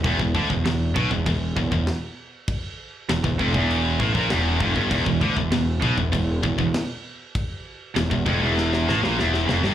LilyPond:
<<
  \new Staff \with { instrumentName = "Distorted electric guitar" } { \clef bass \time 4/4 \key e \phrygian \tempo 4 = 98 e,16 e,16 d16 e,16 e,8 b,16 e,16 e,8 e,16 e,16 r4 | r4 e,16 e,16 f,16 e,8. a,16 ais,16 e,8 f,16 g,16 | e,16 e,16 d16 e,16 e,8 b,16 e,16 e,8 e,16 e,16 r4 | r4 e,16 e,16 f,16 e,8. a,16 ais,16 e,8 f,16 g,16 | }
  \new Staff \with { instrumentName = "Distorted electric guitar" } { \clef bass \time 4/4 \key e \phrygian e,16 e,16 d16 e,16 e,8 b,16 e,16 e,8 e,16 e,16 r4 | r4 e,16 e,16 f,16 e,8. a,16 ais,16 e,8 f,16 g,16 | e,16 e,16 d16 e,16 e,8 b,16 e,16 e,8 e,16 e,16 r4 | r4 e,16 e,16 f,16 e,8. a,16 ais,16 e,8 f,16 g,16 | }
  \new Staff \with { instrumentName = "Distorted electric guitar" } { \clef bass \time 4/4 \key e \phrygian e,16 e,16 d16 e,16 e,8 b,16 e,16 e,8 e,16 e,16 r4 | r4 e,16 e,16 f,16 e,8. a,16 ais,16 e,8 f,16 g,16 | e,16 e,16 d16 e,16 e,8 b,16 e,16 e,8 e,16 e,16 r4 | r4 e,16 e,16 f,16 e,8. a,16 ais,16 e,8 f,16 g,16 | }
  \new Staff \with { instrumentName = "Picked electric bass" } { \clef bass \time 4/4 \key e \phrygian e,,16 e,,16 d,16 e,,16 e,,8 b,,16 e,,16 e,,8 e,,16 e,,16 r4 | r4 e,,16 e,,16 f,,16 e,,8. a,,16 ais,,16 e,,8 f,,16 g,,16 | e,,16 e,,16 d,16 e,,16 e,,8 b,,16 e,,16 e,,8 e,,16 e,,16 r4 | r4 e,,16 e,,16 f,,16 e,,8. a,,16 ais,,16 e,,8 f,,16 g,,16 | }
  \new DrumStaff \with { instrumentName = "Drums" } \drummode { \time 4/4 <cymc bd>16 bd16 bd16 bd16 <cymc sn>8 bd16 bd16 <cymc bd>8 bd16 bd16 <cymc sn>4 | <cymc bd>4 <cymc sn>16 bd16 bd16 bd16 cymc8 bd16 bd16 <cymc sn>8 bd16 bd16 | <cymc bd>16 bd16 bd16 bd16 <cymc sn>8 bd16 bd16 <cymc bd>8 bd16 bd16 <cymc sn>4 | <cymc bd>4 <cymc sn>16 bd16 bd8 sn16 sn16 sn16 sn16 sn16 sn16 sn16 sn16 | }
>>